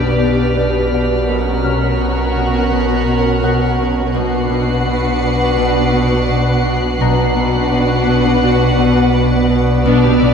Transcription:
Already playing: synth drone B1, harp B2, cello section B2, viola section D4 G4, ambient pad G4 B4 D5, violin section B4 D5 F6 B6, celesta F6
0.22 harp B2
0.58 harp B2
0.93 harp B2, celesta F#5
1.28 harp B2, viola section C#4 F#4, ambient pad A#4 C#5 F#5, violin section A#4 F#5
1.64 harp B2, celesta C#5 F6
2.01 harp B2
2.36 harp B2
2.71 harp B2
3.07 harp B2
3.42 harp B2, celesta F#5 F#6
3.79 harp B2
4.13 double bass section B1, synth drone B1, cello section B2, harp B2, viola section D4 F#4, violin section B4 F#5 F#6 C7, ambient pad B4 D5 F#5
4.49 harp B2
4.85 harp B2
5.22 harp B2
5.57 harp B2
5.94 harp B2
6.29 harp B2
6.65 harp B2
7.00 double bass section B1, synth drone B1, cello section B2, harp B2, viola section D4 F#4, violin section B4 F#5, ambient pad B4 D5 F#5, celesta A#5 A#6
7.36 harp B2
7.72 harp B2
8.07 harp B2
8.42 harp B2
8.78 harp B2
9.13 harp B2
9.49 harp B2
9.85 double bass section B1, cello section B2, harp B2, viola section B3 D4, violin section B4 D5 D6 E6 F6, ambient pad G5
10.04 cello section B2, viola section D4 G4
10.21 harp B2, cello section B2, viola section D4

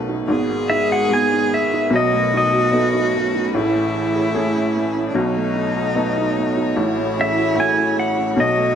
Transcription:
Already playing: upright piano B1 B2 A3 B3 D#4, string section B2 D#3 A3 C#4 B4, felt piano F#3 A3 F#4
0.09 felt piano D#4
0.28 upright piano G#1 G#2, string section G#2 G#3 F#4 B4, felt piano B3 F#4, cello G#4
0.50 felt piano B3
0.70 felt piano D#4, pedal steel guitar E5
0.91 felt piano F#4, pedal steel guitar F#5
1.09 upright piano G#3 B3 F#4, felt piano B3
1.13 pedal steel guitar G#5
1.33 felt piano D#4
1.54 felt piano B3, pedal steel guitar E5
1.73 felt piano D#4
1.90 upright piano B1 B2, string section B2 A3 C#4, felt piano F#3 F#4, cello F#4
1.96 pedal steel guitar D#5
2.13 felt piano A3
2.33 felt piano D#4
2.37 pedal steel guitar D#5
2.53 felt piano F#4
2.71 upright piano A3 B3 D#4, felt piano A3
2.94 felt piano D#4
3.15 felt piano A3
3.35 felt piano D#4
3.54 upright piano A1 A2, string section A2 G#4, felt piano E3 G#4, cello E4
3.74 felt piano A3
3.94 felt piano C#4
4.15 felt piano G#4
4.34 upright piano A3 C#4 G#4, felt piano A3
4.55 felt piano C#4
4.76 felt piano A3
4.94 felt piano C#4
5.08 cello D4
5.14 upright piano B1 B2, string section B2 F#3 D#4 A4 C#5, felt piano F#3 F#4, cello D#4
5.36 felt piano A3
5.55 felt piano D#4
5.76 felt piano F#4
5.95 felt piano A3, upright piano B3 D#4 A4
6.17 felt piano D#4
6.37 felt piano A3
6.57 felt piano D#4
6.76 upright piano A1 A2, string section A2 F#3 E4 G#4, felt piano E3 F#4, cello E4
6.98 felt piano A3
7.17 felt piano C#4, pedal steel guitar E5
7.37 felt piano F#4
7.55 upright piano A3 E4 F#4, felt piano A3
7.60 pedal steel guitar G#5
7.77 felt piano C#4
7.96 felt piano A3, pedal steel guitar F#5
8.17 felt piano C#4
8.36 upright piano B1 B2, string section B2 D#4 A4, felt piano F#3 F#4, cello F#4, pedal steel guitar D#5
8.57 felt piano A3

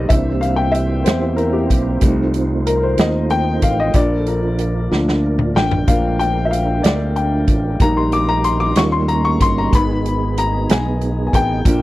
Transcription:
Already playing: upright piano G3 A#3 D#4 A#4 C5 D5 D#5, french horn section G3 A#3, tonewheel organ G4
0.08 fingered electric bass C2, upright piano E3 A#3 D4 E5, french horn section E3 C4, tonewheel organ A#3 C4 E4 C5, kick, closed hi-hat
0.41 upright piano F5, closed hi-hat
0.56 upright piano G5
0.72 upright piano E5, closed hi-hat
1.04 fingered electric bass E2, upright piano C5, snare, closed hi-hat
1.36 upright piano A#4, closed hi-hat
1.53 upright piano G4
1.70 fingered electric bass B1, kick, closed hi-hat
2.00 fingered electric bass C2, french horn section D#3 F3 A3, upright piano G3 A3 D#4, tonewheel organ A3 D#4 F4, kick, closed hi-hat
2.34 closed hi-hat
2.67 upright piano A#4, closed hi-hat
2.83 upright piano C5
2.98 fingered electric bass D#2, upright piano D#5, snare, closed hi-hat
3.30 upright piano G5, closed hi-hat
3.62 fingered electric bass A1, upright piano F5, kick, closed hi-hat
3.80 upright piano D#5
3.94 fingered electric bass A#1, french horn section D3 A#3 D4, upright piano F3 A#3 D4 D5, tonewheel organ D4 A#4, kick, closed hi-hat
4.20 upright piano A4
4.26 upright piano A#4, closed hi-hat
4.59 closed hi-hat
4.91 fingered electric bass D2, upright piano F3 A#3 D4, snare
5.08 snare
5.39 mid tom
5.55 fingered electric bass A1, upright piano G5, snare
5.71 floor tom
5.88 fingered electric bass A#1, upright piano F3 A#3 D4 F5, french horn section G#3, kick, closed hi-hat
6.19 upright piano G5, closed hi-hat
6.45 upright piano E5
6.51 upright piano F5, closed hi-hat
6.83 fingered electric bass D2, upright piano D5, snare, closed hi-hat
7.16 upright piano G5, closed hi-hat
7.48 fingered electric bass A1, kick, closed hi-hat
7.79 fingered electric bass A#1, french horn section D#3 G3 A#3 D#4, upright piano G3 A#3 D#4 A#5, tonewheel organ D#4 G4, kick, closed hi-hat
7.97 upright piano C6
8.12 upright piano D6, closed hi-hat
8.29 upright piano A#5
8.44 upright piano C6, closed hi-hat
8.60 upright piano D6
8.76 fingered electric bass D#2, upright piano G3 C#4 F4 C#6, tonewheel organ G3 A#3 C#4, french horn section C#4, snare, closed hi-hat
8.92 upright piano C6
9.08 upright piano A#5, closed hi-hat
9.25 upright piano C#6
9.40 fingered electric bass G1, upright piano C6, kick, closed hi-hat
9.58 upright piano A#5
9.72 fingered electric bass G#1, french horn section G#3 B3 D#4, upright piano G#3 B3 D#4 B5, tonewheel organ B3 G#4, kick, closed hi-hat
10.06 closed hi-hat
10.38 upright piano A#5, closed hi-hat
10.69 fingered electric bass B1, upright piano G#5, snare, closed hi-hat
11.01 closed hi-hat
11.27 upright piano G#5
11.33 fingered electric bass A1, upright piano G5, kick, closed hi-hat
11.65 fingered electric bass A#1, french horn section D3 F3 A#3 D4, upright piano F3 A#3 D4, tonewheel organ A#3 D4 F4, kick, closed hi-hat

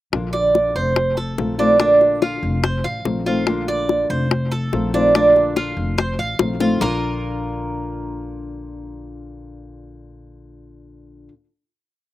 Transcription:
0.12 upright bass A#1, nylon-string guitar D3 A#3 D4 F4, high bongo
0.33 cuban tres D5, high bongo
0.55 high bongo
0.75 upright bass F1, cuban tres C5
0.96 muted nylon-string guitar stroke, high bongo
1.17 cuban tres A4, high bongo
1.38 upright bass A#1, nylon-string guitar D#3 A3 C4 F4, high bongo, low bongo
1.58 nylon-string guitar D#3 A3 C4 F4, cuban tres D4, high bongo
1.78 nylon-string guitar D3 A#3 D4 F4, cuban tres D4, high bongo
2.01 high bongo
2.22 cuban tres F4, high bongo
2.43 upright bass F1
2.63 cuban tres C5, muted nylon-string guitar stroke, high bongo
2.84 upright bass A1, cuban tres F5, high bongo
3.05 upright bass A#1, nylon-string guitar D#3 A3 C4 F4, high bongo, low bongo
3.26 nylon-string guitar D#3 A3 C4 F4, cuban tres F4, high bongo
3.47 nylon-string guitar D3 A#3 D4 F4, high bongo
3.68 cuban tres D5, high bongo
3.89 high bongo
4.10 upright bass F1, cuban tres C5
4.31 muted nylon-string guitar stroke, high bongo
4.52 cuban tres A4, high bongo
4.72 upright bass A#1, nylon-string guitar D#3 A3 C4 F4, high bongo, low bongo
4.94 nylon-string guitar D#3 A3 C4 F4, cuban tres D4, high bongo
5.15 nylon-string guitar D3 A#3 D4 F4, cuban tres D4, high bongo
5.36 high bongo
5.56 cuban tres F4, high bongo
5.77 upright bass F1
5.98 cuban tres C5, muted nylon-string guitar stroke, high bongo
6.19 upright bass A1, cuban tres F5, high bongo
6.39 upright bass A#1, nylon-string guitar D#3 A3 C4 F4, high bongo
6.60 nylon-string guitar D#3 A3 C4 F4, cuban tres F4, low bongo
6.81 upright bass A#1, nylon-string guitar A#2 D3 A#3 D4 F4, cuban tres A#3 F4 A#4, low bongo

